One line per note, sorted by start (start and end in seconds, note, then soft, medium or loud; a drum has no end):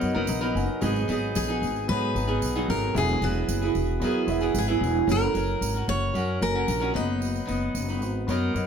0.00 0.13 F#2 medium
0.00 0.15 F#3 medium
0.00 0.15 B3 medium
0.00 0.81 B3 medium
0.00 0.14 D#4 medium
0.00 0.02 F#4 medium
0.00 0.55 F#4 medium
0.00 0.02 A#4 medium
0.00 0.13 A#4 medium
0.00 0.29 A#4 medium
0.00 0.83 C#5 loud
0.00 0.03 D#5 loud
0.00 0.29 D#5 medium
0.00 0.29 A#5 medium
0.00 tambourine soft
0.15 0.26 F#1 medium
0.15 0.41 F#3 medium
0.15 0.41 B3 medium
0.15 0.40 D#4 medium
0.15 0.40 A#4 medium
0.27 0.50 A#1 medium
0.27 0.42 F#5 medium
0.27 0.54 A#5 medium
0.27 0.41 D#6 medium
0.27 tambourine medium
0.41 0.80 F#3 medium
0.41 0.81 B3 medium
0.41 0.81 D#4 medium
0.41 0.81 A#4 medium
0.41 0.55 D#5 medium
0.41 0.54 B5 medium
0.55 0.66 F#1 medium
0.55 0.68 B4 medium
0.55 0.67 F#5 medium
0.55 0.68 G#5 medium
0.55 tambourine soft
0.69 0.94 A#4 medium
0.69 0.94 F#5 medium
0.81 1.04 G#1 loud
0.81 1.07 F#3 medium
0.81 1.52 B3 medium
0.81 1.07 B3 medium
0.81 1.08 D#4 medium
0.81 1.52 F#4 medium
0.81 1.53 G#4 medium
0.81 1.09 G#4 medium
0.81 1.53 D#5 medium
0.81 tambourine medium
0.96 tambourine soft
1.08 1.30 G#1 medium
1.08 1.48 F#3 medium
1.08 1.48 B3 medium
1.08 1.48 D#4 medium
1.08 1.47 G#4 medium
1.08 tambourine soft
1.35 1.63 A#1 medium
1.35 1.88 G#4 medium
1.35 tambourine medium
1.48 1.87 F#3 soft
1.48 1.88 B3 soft
1.48 1.89 D#4 soft
1.48 1.88 G#4 medium
1.48 tambourine soft
1.62 1.90 G#1 medium
1.62 tambourine soft
1.76 tambourine soft
1.87 2.11 G#2 medium
1.87 2.27 F#3 medium
1.87 2.05 B3 medium
1.87 2.27 B3 medium
1.87 2.27 D#4 medium
1.87 2.06 F#4 medium
1.87 2.06 G#4 medium
1.87 2.69 B4 loud
1.87 2.07 C#5 medium
1.87 tambourine soft
1.91 2.26 G#4 medium
2.14 2.37 G#1 medium
2.14 2.68 B3 medium
2.14 2.68 F#4 medium
2.14 2.68 G#4 medium
2.14 2.69 A#5 medium
2.14 tambourine soft
2.28 2.56 G#2 medium
2.28 2.55 D#3 medium
2.28 2.55 F#3 medium
2.28 2.54 B3 medium
2.28 2.54 D#4 medium
2.28 2.54 G#4 medium
2.28 tambourine soft
2.41 2.63 B1 medium
2.41 tambourine medium
2.55 2.96 G#2 medium
2.55 2.96 D#3 medium
2.55 2.93 F#3 medium
2.55 2.94 B3 medium
2.55 2.95 D#4 medium
2.55 2.95 G#4 medium
2.68 2.90 G#1 medium
2.68 2.96 A#4 medium
2.68 tambourine medium
2.93 3.17 E1 loud
2.93 3.20 F#3 medium
2.93 3.65 B3 medium
2.93 3.21 B3 medium
2.93 3.22 E4 medium
2.93 3.65 F#4 medium
2.93 3.65 G#4 medium
2.93 3.66 E5 medium
2.93 tambourine medium
2.97 3.23 G#4 medium
2.97 3.24 G#4 medium
3.09 tambourine soft
3.21 3.43 E1 medium
3.21 3.61 F#3 medium
3.21 3.62 B3 medium
3.21 3.62 E4 medium
3.21 4.25 F#4 medium
3.21 3.60 G#4 medium
3.21 tambourine soft
3.48 3.70 F#1 medium
3.48 tambourine medium
3.61 4.01 B3 soft
3.61 4.02 E4 soft
3.61 4.01 G#4 soft
3.61 tambourine soft
3.75 3.97 E1 medium
3.75 tambourine soft
4.00 4.29 E2 medium
4.00 4.41 F#3 medium
4.00 4.18 B3 medium
4.00 4.41 B3 medium
4.00 4.41 E4 medium
4.00 4.19 F#4 medium
4.00 4.19 G#4 medium
4.00 4.19 A#4 medium
4.00 tambourine soft
4.04 4.40 G#4 medium
4.27 4.50 E1 medium
4.27 4.81 B3 medium
4.27 4.81 F#4 medium
4.27 4.81 G#4 medium
4.27 4.81 E5 loud
4.27 tambourine medium
4.41 4.68 E3 medium
4.41 4.68 F#3 medium
4.41 4.67 B3 medium
4.41 4.67 E4 medium
4.41 4.66 G#4 medium
4.41 tambourine soft
4.54 4.76 G#1 medium
4.54 tambourine medium
4.58 5.11 G#4 medium
4.67 5.08 E3 medium
4.67 5.06 F#3 medium
4.67 5.08 B3 medium
4.67 5.08 E4 medium
4.67 5.08 G#4 medium
4.81 5.03 E1 medium
4.81 tambourine medium
5.07 5.30 F#1 loud
5.07 5.33 F#3 medium
5.07 5.78 C#4 medium
5.07 5.33 C#4 medium
5.07 5.79 F#4 medium
5.07 5.35 F#4 medium
5.07 5.79 A#4 medium
5.07 5.36 A#4 medium
5.07 5.79 F#5 medium
5.07 tambourine medium
5.11 5.88 A#4 loud
5.23 tambourine soft
5.34 5.57 F#1 medium
5.34 5.74 F#3 medium
5.34 5.75 C#4 medium
5.34 5.75 F#4 medium
5.34 5.73 A#4 medium
5.34 tambourine soft
5.61 5.83 G#1 medium
5.61 tambourine medium
5.74 6.14 C#4 soft
5.74 6.15 F#4 soft
5.74 6.14 A#4 medium
5.74 tambourine soft
5.88 6.10 F#1 medium
5.88 6.38 C#5 loud
5.88 tambourine soft
6.13 6.36 F#2 medium
6.13 6.54 F#3 medium
6.13 6.32 C#4 medium
6.13 6.54 C#4 medium
6.13 6.32 F#4 medium
6.13 6.54 F#4 medium
6.13 6.32 A#4 medium
6.13 6.53 A#4 medium
6.13 6.33 F#5 medium
6.13 tambourine soft
6.40 6.63 F#1 medium
6.40 6.94 C#4 medium
6.40 6.93 F#4 medium
6.40 6.94 A#4 medium
6.40 6.91 A#4 loud
6.40 6.95 G#5 medium
6.40 tambourine medium
6.54 6.81 F#3 medium
6.54 6.81 C#4 medium
6.54 6.80 F#4 medium
6.54 6.79 A#4 medium
6.68 6.90 A#1 medium
6.68 tambourine medium
6.80 6.93 F#3 medium
6.80 6.94 C#4 medium
6.80 6.94 F#4 medium
6.80 6.94 A#4 medium
6.94 7.39 F#1 medium
6.94 7.45 F#3 medium
6.94 7.79 B3 medium
6.94 7.47 B3 medium
6.94 7.47 D#4 medium
6.94 7.80 F#4 medium
6.94 8.51 B4 medium
6.94 7.80 D#5 medium
6.94 7.80 A#5 medium
6.94 tambourine medium
7.22 tambourine medium
7.35 tambourine soft
7.45 7.70 F#1 medium
7.45 7.87 F#3 medium
7.45 7.87 B3 medium
7.45 7.87 D#4 medium
7.45 tambourine soft
7.74 8.01 F#1 medium
7.74 tambourine medium
7.89 8.28 B3 medium
7.89 8.28 D#4 medium
7.89 tambourine soft
8.01 8.23 G#1 medium
8.01 tambourine soft
8.27 8.50 F#2 medium
8.27 8.67 F#3 medium
8.27 8.45 B3 medium
8.27 8.67 B3 medium
8.27 8.66 D#4 medium
8.27 8.45 F#4 medium
8.27 8.46 A#4 medium
8.27 8.65 A#4 medium
8.27 8.46 C#5 medium
8.27 tambourine soft
8.53 8.67 F#2 medium
8.53 8.67 B3 medium
8.53 8.67 F#4 medium
8.53 8.67 A#4 medium
8.53 8.67 D#5 medium
8.53 tambourine medium